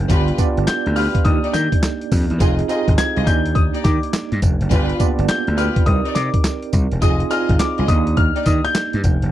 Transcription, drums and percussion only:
0.10 kick, closed hi-hat, tambourine
0.28 closed hi-hat
0.38 kick, closed hi-hat, tambourine
0.57 closed hi-hat
0.67 snare, clap, closed hi-hat, tambourine
0.86 closed hi-hat
0.96 open hi-hat, tambourine
1.15 kick, closed hi-hat
1.25 kick, closed hi-hat
1.44 closed hi-hat
1.54 snare, closed hi-hat, tambourine
1.72 kick, closed hi-hat
1.83 snare, clap, closed hi-hat, tambourine
2.01 closed hi-hat
2.12 kick, open hi-hat, tambourine
2.30 closed hi-hat
2.40 kick, closed hi-hat, tambourine
2.59 closed hi-hat
2.69 closed hi-hat, tambourine
2.88 kick, closed hi-hat
2.98 snare, clap, closed hi-hat, tambourine
3.17 closed hi-hat
3.27 kick, closed hi-hat, tambourine
3.46 closed hi-hat
3.55 kick, closed hi-hat
3.75 closed hi-hat
3.84 kick, snare, closed hi-hat, tambourine
4.03 closed hi-hat
4.13 snare, clap, closed hi-hat, tambourine
4.32 closed hi-hat
4.42 kick, closed hi-hat, tambourine
4.61 closed hi-hat
4.71 kick, closed hi-hat, tambourine
4.89 closed hi-hat
5.00 kick, closed hi-hat, tambourine
5.19 closed hi-hat
5.28 snare, clap, closed hi-hat, tambourine
5.47 closed hi-hat
5.58 closed hi-hat, tambourine
5.76 kick, closed hi-hat
5.86 kick, closed hi-hat
6.05 closed hi-hat
6.15 snare, closed hi-hat, tambourine
6.34 kick, closed hi-hat
6.44 snare, clap, closed hi-hat, tambourine
6.63 closed hi-hat
6.73 kick, closed hi-hat, tambourine
6.92 closed hi-hat
7.02 kick, closed hi-hat, tambourine
7.20 closed hi-hat
7.31 closed hi-hat, tambourine
7.49 kick, closed hi-hat
7.59 snare, clap, closed hi-hat, tambourine
7.78 closed hi-hat
7.88 kick, closed hi-hat, tambourine
8.07 closed hi-hat
8.17 kick, closed hi-hat
8.36 closed hi-hat
8.46 kick, snare, closed hi-hat, tambourine
8.65 closed hi-hat
8.75 snare, clap, closed hi-hat, tambourine
8.93 closed hi-hat
9.04 kick, closed hi-hat, tambourine
9.22 closed hi-hat

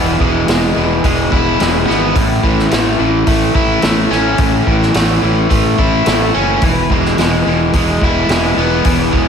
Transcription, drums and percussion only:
0.20 kick
0.48 snare, open hi-hat
1.04 kick, open hi-hat
1.32 kick
1.60 snare, open hi-hat
1.89 snare
2.16 kick, open hi-hat
2.43 kick
2.59 snare
2.71 snare, open hi-hat
3.27 kick, open hi-hat
3.55 kick
3.82 snare, open hi-hat
4.12 snare
4.38 kick, open hi-hat
4.67 kick
4.82 snare
4.94 snare, open hi-hat
5.51 kick, open hi-hat
5.78 kick
6.06 snare, open hi-hat
6.62 kick, open hi-hat
6.90 kick
7.05 snare
7.18 snare, open hi-hat
7.73 kick, open hi-hat
8.01 kick
8.29 snare, open hi-hat
8.85 kick, open hi-hat
9.13 kick

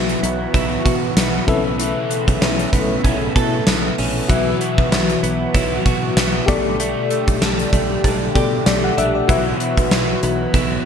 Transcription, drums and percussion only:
0.09 closed hi-hat
0.24 closed hi-hat
0.54 kick, closed hi-hat
0.86 kick, closed hi-hat
1.17 snare, closed hi-hat, tambourine
1.48 kick, closed hi-hat
1.79 closed hi-hat
2.11 closed hi-hat
2.28 kick, closed hi-hat
2.42 snare, closed hi-hat, tambourine
2.59 closed hi-hat
2.73 kick, closed hi-hat
3.04 kick, closed hi-hat
3.36 kick, closed hi-hat
3.67 snare, closed hi-hat, tambourine
3.98 open hi-hat
4.29 kick, closed hi-hat
4.61 closed hi-hat
4.78 kick
4.92 snare, closed hi-hat, tambourine
5.09 closed hi-hat
5.24 closed hi-hat
5.55 kick, closed hi-hat
5.86 kick, closed hi-hat
6.17 snare, closed hi-hat, tambourine
6.48 kick, closed hi-hat
6.80 closed hi-hat
7.10 closed hi-hat
7.28 kick, closed hi-hat
7.42 snare, closed hi-hat, tambourine
7.59 closed hi-hat
7.73 kick, closed hi-hat
8.04 kick, closed hi-hat
8.35 kick, closed hi-hat
8.66 snare, closed hi-hat, tambourine
8.98 closed hi-hat
9.29 kick, closed hi-hat
9.60 closed hi-hat
9.77 kick, closed hi-hat
9.91 snare, closed hi-hat, tambourine
10.23 closed hi-hat
10.54 kick, closed hi-hat

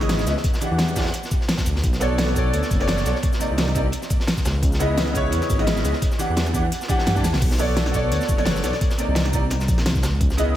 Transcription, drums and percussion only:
0.01 snare
0.09 snare, closed hi-hat
0.19 snare, shaker
0.27 snare, closed hi-hat, shaker
0.37 snare
0.44 kick, closed hi-hat
0.53 snare, shaker
0.61 closed hi-hat, shaker
0.78 snare, closed hi-hat
0.88 snare, shaker
0.96 kick, snare, closed hi-hat, shaker
1.00 snare, closed hi-hat
1.06 snare, closed hi-hat
1.14 closed hi-hat
1.23 snare, shaker
1.31 kick, closed hi-hat, shaker
1.41 snare
1.48 snare, closed hi-hat
1.57 kick, snare, closed hi-hat, shaker
1.66 closed hi-hat, shaker
1.76 snare
1.84 kick, closed hi-hat
1.93 snare, shaker
2.01 snare, closed hi-hat, shaker
2.18 snare, closed hi-hat
2.28 snare
2.36 kick, closed hi-hat, shaker
2.53 closed hi-hat
2.63 snare, shaker
2.71 kick, closed hi-hat, shaker
2.81 snare
2.88 snare, closed hi-hat
2.97 snare, shaker
3.05 snare, closed hi-hat, shaker
3.15 snare
3.23 kick, closed hi-hat
3.33 snare, shaker
3.41 closed hi-hat, shaker
3.58 snare, closed hi-hat
3.68 snare
3.75 kick, closed hi-hat, shaker
3.92 closed hi-hat
4.02 snare, shaker
4.10 kick, closed hi-hat, shaker
4.20 snare
4.27 snare, closed hi-hat
4.37 kick, snare, shaker
4.45 snare, closed hi-hat, shaker
4.63 kick, closed hi-hat
4.72 snare, shaker
4.80 snare, closed hi-hat, shaker
4.97 snare, closed hi-hat
5.07 snare
5.15 kick, closed hi-hat, shaker
5.32 closed hi-hat
5.41 snare, shaker
5.50 kick, closed hi-hat, shaker
5.59 snare
5.67 snare, closed hi-hat
5.76 snare, shaker
5.84 snare, closed hi-hat, shaker
5.93 snare
6.02 kick, closed hi-hat
6.12 snare, shaker
6.20 snare, closed hi-hat, shaker
6.37 snare, closed hi-hat
6.46 snare, shaker
6.54 kick, closed hi-hat, shaker
6.72 closed hi-hat
6.81 snare, shaker
6.89 kick, closed hi-hat, shaker
6.98 snare
7.06 snare, closed hi-hat
7.16 kick, snare, shaker
7.24 snare, closed hi-hat, shaker
7.33 snare
7.41 kick, closed hi-hat, crash
7.51 snare, shaker
7.59 closed hi-hat, shaker
7.77 snare, closed hi-hat
7.86 snare
7.94 kick, closed hi-hat, shaker
8.12 closed hi-hat
8.21 snare, shaker
8.29 kick, closed hi-hat, shaker
8.38 snare
8.46 snare, closed hi-hat
8.56 snare, shaker
8.64 snare, closed hi-hat, shaker
8.73 snare
8.81 kick, closed hi-hat
8.90 snare, shaker
8.98 closed hi-hat, shaker
9.15 snare, closed hi-hat
9.25 snare
9.33 kick, closed hi-hat, shaker
9.50 snare, closed hi-hat
9.60 snare, shaker
9.68 kick, closed hi-hat, shaker
9.78 snare
9.86 snare, closed hi-hat
9.95 kick, snare, shaker
10.03 snare, closed hi-hat, shaker
10.21 kick, closed hi-hat
10.30 snare, shaker
10.38 closed hi-hat, shaker

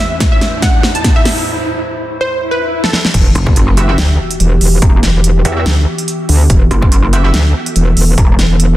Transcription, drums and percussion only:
0.20 kick, snare, closed hi-hat
0.41 snare, closed hi-hat
0.62 kick, snare, closed hi-hat
0.83 snare
0.95 closed hi-hat
1.04 kick, snare, closed hi-hat
1.25 snare, open hi-hat
2.84 snare
2.93 snare
3.05 snare
3.14 kick, closed hi-hat, crash
3.35 closed hi-hat
3.47 kick
3.56 closed hi-hat
3.77 closed hi-hat
3.98 snare, closed hi-hat
4.31 closed hi-hat
4.40 closed hi-hat
4.61 open hi-hat
4.82 kick, closed hi-hat
5.03 snare, closed hi-hat
5.24 closed hi-hat
5.45 closed hi-hat
5.66 snare, closed hi-hat
5.98 closed hi-hat
6.08 closed hi-hat
6.29 open hi-hat
6.50 kick, closed hi-hat
6.71 closed hi-hat
6.82 kick
6.92 closed hi-hat
7.13 closed hi-hat
7.34 snare, closed hi-hat
7.66 closed hi-hat
7.76 closed hi-hat
7.97 open hi-hat
8.18 kick, closed hi-hat
8.39 snare, closed hi-hat
8.60 closed hi-hat

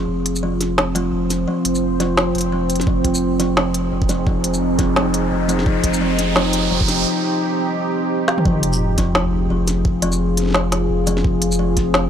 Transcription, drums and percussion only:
0.26 closed hi-hat
0.36 shaker
0.61 snare, closed hi-hat
0.78 snare
0.96 closed hi-hat
1.30 snare, closed hi-hat, shaker
1.65 closed hi-hat
1.75 shaker
2.00 snare, closed hi-hat
2.17 snare
2.35 closed hi-hat
2.38 closed hi-hat
2.41 closed hi-hat
2.70 closed hi-hat, shaker
2.75 closed hi-hat
2.80 snare, closed hi-hat
2.87 kick
3.04 kick, closed hi-hat
3.15 shaker
3.40 snare, closed hi-hat
3.57 snare
3.74 closed hi-hat
4.02 kick
4.09 snare, closed hi-hat, shaker
4.27 kick
4.44 closed hi-hat
4.54 shaker
4.79 kick, snare, closed hi-hat
4.96 snare
5.14 closed hi-hat
5.49 closed hi-hat, shaker
5.59 snare
5.66 kick
5.84 kick, closed hi-hat
5.94 shaker
6.19 snare, closed hi-hat
6.36 snare
6.53 closed hi-hat
6.81 kick
6.88 snare, closed hi-hat, shaker
8.28 snare
8.38 mid tom
8.46 kick
8.63 closed hi-hat
8.73 shaker
8.98 kick, snare, closed hi-hat
9.15 snare
9.68 snare, closed hi-hat, shaker
9.85 kick
10.02 closed hi-hat
10.12 shaker
10.37 snare, closed hi-hat
10.40 snare
10.43 snare
10.46 snare
10.48 snare
10.51 snare
10.52 snare
10.54 snare
10.72 snare, closed hi-hat
11.07 closed hi-hat, shaker
11.17 snare
11.24 kick
11.42 closed hi-hat
11.52 shaker
11.77 kick, snare, closed hi-hat
11.94 snare

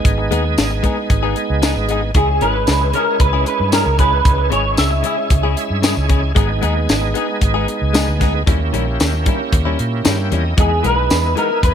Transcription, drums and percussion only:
0.05 kick, closed hi-hat
0.32 closed hi-hat
0.58 snare, closed hi-hat, tambourine
0.84 kick, closed hi-hat
1.10 kick, closed hi-hat
1.36 closed hi-hat
1.62 snare, closed hi-hat, tambourine
1.89 closed hi-hat
2.14 kick, closed hi-hat
2.41 closed hi-hat
2.67 snare, closed hi-hat, tambourine
2.93 closed hi-hat
3.20 kick, closed hi-hat
3.46 closed hi-hat
3.72 snare, closed hi-hat, tambourine
3.99 kick, closed hi-hat
4.25 kick, closed hi-hat
4.52 closed hi-hat
4.77 snare, closed hi-hat, tambourine
5.04 closed hi-hat
5.30 kick, closed hi-hat
5.57 closed hi-hat
5.83 snare, closed hi-hat, tambourine
6.09 kick, closed hi-hat
6.36 kick, closed hi-hat
6.63 closed hi-hat
6.89 snare, closed hi-hat, tambourine
7.15 closed hi-hat
7.41 kick, closed hi-hat
7.68 closed hi-hat
7.94 snare, closed hi-hat, tambourine
8.21 kick, snare, closed hi-hat
8.47 kick, closed hi-hat
8.74 closed hi-hat
9.00 snare, closed hi-hat, tambourine
9.26 kick, closed hi-hat
9.52 kick, closed hi-hat
9.79 closed hi-hat
10.05 snare, closed hi-hat, tambourine
10.32 closed hi-hat
10.58 kick, closed hi-hat
10.84 closed hi-hat
11.10 snare, closed hi-hat, tambourine
11.37 closed hi-hat
11.63 kick, closed hi-hat

